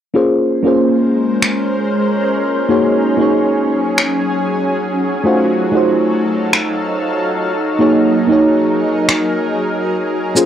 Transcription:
0.14 2.68 G#3 medium
0.14 0.59 A#3 medium
0.14 0.60 C#4 medium
0.14 5.22 C#4 medium
0.14 0.60 F4 medium
0.14 0.60 G#4 medium
0.14 2.68 A#4 medium
0.14 2.68 C5 medium
0.14 0.61 C5 medium
0.63 2.66 A#3 medium
0.63 2.67 C#4 medium
0.63 2.67 F4 medium
0.63 2.68 G#4 medium
0.68 2.69 C5 medium
1.42 finger snap medium
2.69 10.33 F#3 medium
2.69 3.15 A#3 medium
2.69 3.15 D#4 medium
2.69 3.15 F#4 medium
2.69 5.23 G#4 medium
2.69 3.15 G#4 medium
2.69 3.16 C#5 medium
3.17 5.21 A#3 medium
3.17 5.21 D#4 medium
3.17 5.22 F#4 medium
3.17 5.23 G#4 medium
3.22 5.23 C#5 medium
3.98 finger snap medium
5.24 5.70 A3 medium
5.24 5.70 D#4 medium
5.24 10.32 D#4 medium
5.24 5.71 F4 medium
5.24 5.71 F#4 medium
5.24 7.47 A4 medium
5.24 5.71 C5 medium
5.24 7.47 F5 medium
5.71 7.46 A3 medium
5.71 7.46 D#4 medium
5.71 7.47 F4 medium
5.71 7.48 F#4 medium
5.76 7.48 C5 medium
6.53 finger snap medium
7.49 10.46 G#4 medium
7.49 10.34 A#4 medium
7.79 8.25 A#3 medium
7.79 8.25 D#4 medium
7.79 8.26 F#4 medium
7.79 8.26 G#4 medium
7.79 8.26 C#5 medium
8.27 10.31 A#3 medium
8.27 10.32 D#4 medium
8.27 10.33 F#4 medium
8.27 10.33 G#4 medium
8.32 10.34 C#5 medium
9.09 finger snap medium
10.35 10.46 A#3 medium
10.35 10.46 C#4 medium
10.35 10.46 F4 medium
10.35 10.46 G#4 medium
10.35 10.46 C5 medium
10.35 shaker soft

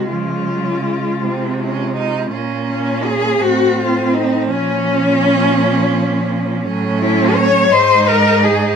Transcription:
0.00 0.12 D#3 medium
0.00 1.25 G#3 medium
0.09 1.23 C#3 medium
0.09 0.49 F3 medium
0.09 2.28 F4 medium
0.48 0.85 F#3 medium
0.86 2.34 G#3 medium
1.21 2.31 C3 medium
1.21 1.61 C4 medium
1.60 1.96 C#4 medium
1.97 2.32 D#4 medium
2.31 3.39 A#2 medium
2.31 3.43 A#3 medium
2.31 3.39 C#4 medium
2.68 3.05 C#4 medium
3.04 3.42 G#4 medium
3.41 4.51 A2 medium
3.41 4.51 C4 medium
3.41 4.53 C4 medium
3.41 3.81 F#4 medium
3.79 4.15 F4 medium
4.13 4.49 D#4 medium
4.50 6.67 A#2 medium
4.50 6.63 F3 medium
4.50 6.62 C#4 loud
4.50 6.65 C#4 medium
6.65 7.71 A2 medium
6.65 7.74 F#3 medium
6.65 7.70 C#4 medium
6.99 7.36 E4 loud
7.35 7.73 C#5 loud
7.72 8.76 G#2 medium
7.72 8.76 G#3 medium
7.72 8.76 D#4 medium
7.72 8.10 C5 loud
8.08 8.45 A#4 loud
8.44 8.76 G#4 medium

